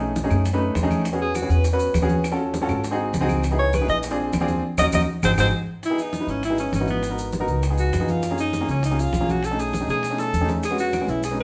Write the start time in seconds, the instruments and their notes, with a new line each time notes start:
Already playing: upright bass B1, grand piano A3 C#4 D#4 G#4
0.01 high bongo, high conga
0.16 high bongo, high conga, maracas
0.24 grand piano A3 C#4 D#4 G#4
0.30 upright bass F#2, high conga, low conga, claves, maracas
0.45 high bongo, high conga, maracas
0.53 grand piano A3 C#4 D#4 B4
0.60 high bongo, high conga
0.75 upright bass E2, high bongo, low bongo, high conga, maracas
0.83 grand piano A3 C#4 D#4 G#4
0.90 high bongo, high conga, claves, maracas
1.05 high bongo, high conga, maracas
1.13 grand piano B3 C#4 F#4 G#4
1.22 alto saxophone G#4
1.35 alto saxophone F#4, high bongo, high conga, claves, maracas
1.42 grand piano B3 C#4 F#4 G#4
1.49 upright bass E2, alto saxophone B4, maracas
1.64 high bongo, high conga, maracas
1.73 grand piano B3 C#4 F#4 B4
1.79 high conga, maracas
1.94 upright bass D#2, high bongo, low bongo, high conga, claves, maracas
2.02 grand piano B3 C#4 F#4 G#4
2.09 high conga, maracas
2.24 high bongo, claves, maracas
2.32 grand piano C#4 F4 F#4 A4
2.39 high bongo
2.54 high bongo, high conga, maracas
2.62 grand piano C#4 F4 F#4 A4
2.69 upright bass G#1, high conga, low conga, claves, maracas
2.84 high bongo, high conga, maracas
2.91 grand piano C4 D#4 F#4 G#4
2.99 high bongo, high conga
3.13 upright bass C#2, high bongo, low bongo, high conga, maracas
3.21 grand piano C4 D#4 F#4 G#4
3.29 high bongo, high conga, claves, maracas
3.43 high bongo, high conga, maracas
3.51 grand piano B3 D#4 E4 G#4
3.59 alto saxophone C#5
3.73 alto saxophone B4, high bongo, high conga, claves, maracas
3.81 grand piano B3 D#4 E4 G#4
3.88 upright bass A#1, alto saxophone D#5, maracas
4.03 high bongo, high conga, maracas
4.11 grand piano C4 D4 F4 G#4
4.19 high conga
4.32 upright bass D#2, high bongo, low bongo, high conga, claves, maracas
4.41 grand piano C4 D4 F4 G#4
4.48 high conga, maracas
4.78 upright bass D#2, grand piano C#4 D#4 F#4, alto saxophone D#5, low bongo, high conga, claves, maracas
4.92 upright bass D#2, grand piano C#4 D#4 F#4, alto saxophone D#5, low bongo, high conga, claves, maracas
5.23 upright bass G#1, grand piano D#4 F#4 G#4, alto saxophone C5, low bongo, high conga, claves, maracas
5.38 upright bass G#1, grand piano D#4 F#4 G#4, alto saxophone C5, low bongo, high conga, claves, maracas
5.83 alto saxophone E4, high bongo, high conga, maracas
5.90 grand piano B3 D#4 E4 G#4
5.98 alto saxophone D#4, high conga, maracas
6.13 high bongo, high conga, maracas
6.20 grand piano B3 D#4 E4 B4
6.27 upright bass G#1, alto saxophone C#4, high conga, maracas
6.43 alto saxophone E4, high bongo, high conga, maracas
6.50 grand piano B3 D#4 E4 G#4
6.58 alto saxophone C#4, high conga, maracas
6.72 upright bass G#1, alto saxophone C#4, high bongo, low bongo, high conga, maracas
6.80 grand piano B3 D#4 E4 F#4
6.88 alto saxophone B3, high conga, maracas
7.03 high bongo, maracas
7.10 grand piano B3 D#4 F#4 A#4
7.18 high bongo, high conga, maracas
7.32 high bongo, high conga, maracas
7.40 grand piano B3 D#4 F#4 A#4
7.47 upright bass C#2, high conga, maracas
7.63 high bongo, high conga, maracas
7.70 grand piano B3 D#4 F4 G#4
7.78 alto saxophone F#4, high conga, maracas
7.92 upright bass F#2, high bongo, low bongo, high conga, maracas
8.00 grand piano B3 D#4 F4 G#4
8.08 alto saxophone F4, high bongo, high conga, maracas
8.23 high bongo, maracas
8.31 grand piano A#3 C#4 F4 G#4
8.38 alto saxophone D#4, maracas
8.53 high bongo, high conga, maracas
8.61 grand piano A#3 C#4 F4 G#4
8.67 upright bass C#2, alto saxophone C#4, high conga, maracas
8.83 alto saxophone D#4, high bongo, high conga, maracas
8.91 grand piano A#3 C#4 F4 G#4
8.98 alto saxophone F4, high conga, maracas
9.13 upright bass B1, high bongo, low bongo, high conga, maracas
9.20 grand piano A#3 C#4 F4 G#4
9.28 alto saxophone F#4, high conga, maracas
9.43 alto saxophone A4, high bongo, maracas
9.51 grand piano A3 C#4 D#4 G#4
9.58 alto saxophone G#4, high bongo, maracas
9.73 high bongo, high conga, maracas
9.80 grand piano A3 C#4 D#4 G#4
9.87 upright bass B2, alto saxophone G#4, high bongo, high conga, maracas
10.03 high bongo, high conga, maracas
10.10 grand piano A3 C#4 D#4 G#4
10.18 alto saxophone A4, high bongo, high conga, maracas
10.33 upright bass E2, high conga, maracas
10.40 grand piano A3 C#4 D#4 G#4
10.48 low bongo, high conga, maracas
10.63 alto saxophone G#4, high bongo, maracas
10.70 grand piano G#3 B3 C#4 F#4
10.78 alto saxophone F#4, high conga, maracas
10.93 high bongo, high conga, claves, maracas
11.01 grand piano G#3 B3 C#4 G#4
11.07 upright bass B1, alto saxophone E4, high conga, maracas
11.23 alto saxophone G#4, high bongo, high conga, maracas
11.31 grand piano G#3 B3 C#4 D#4
11.39 high conga